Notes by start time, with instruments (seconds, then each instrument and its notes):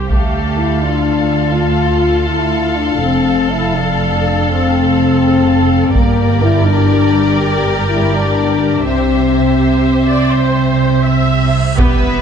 Already playing: viola section G4
0.08 double bass section D2, cello section D2, french horn section A3, violin section A4 F5, taiko
0.58 french horn section E4
0.82 french horn section D4, viola section F4
1.53 french horn section F4
2.27 french horn section E4
2.76 french horn section D4
3.00 double bass section F1, cello section F2, french horn section C4, viola section A4
3.51 french horn section E4
3.75 french horn section D4
4.49 french horn section C4
5.94 double bass section G1, cello section G2, french horn section A#3, viola section G4, violin section A#4 D5, taiko
6.42 french horn section E4
6.66 french horn section D4
7.40 french horn section G4
7.90 french horn section E4
8.13 french horn section D4
8.85 double bass section C2, cello section C3, french horn section C4, violin section C5 E5, reverse cymbal
9.60 viola section G4
10.08 viola section D5
10.33 viola section C5
11.05 viola section E5
11.78 double bass section E1, string section G3 B3 B4, viola section B3 G4, french horn section B3, cello section B3, violin section B4 E5, taiko, impact
12.03 double bass section E1, viola section B3 E4